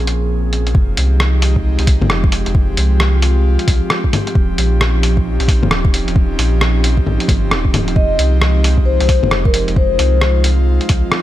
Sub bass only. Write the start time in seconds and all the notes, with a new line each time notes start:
Already playing: A#1
0.75 F1
0.98 C2
1.79 C2
2.01 F1
2.47 F1
2.77 C2
3.68 C2
4.35 D#1
4.58 A#1
5.40 A#1
5.62 D#1
6.08 D#1
6.38 A#1
7.28 G1
7.51 D#1
7.96 F1
8.19 C2
9.01 C2
9.23 F1
9.68 F1
9.99 C2
10.90 C2